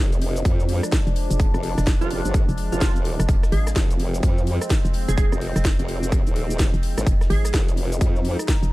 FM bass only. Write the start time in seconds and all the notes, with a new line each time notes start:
1.07 F1
1.31 F1
1.78 F1
2.49 F1
3.19 F1
3.29 F1
3.52 G#1
4.85 F1
5.08 F1
5.56 F1
6.74 F1
7.07 F1
7.30 G#1
8.63 F1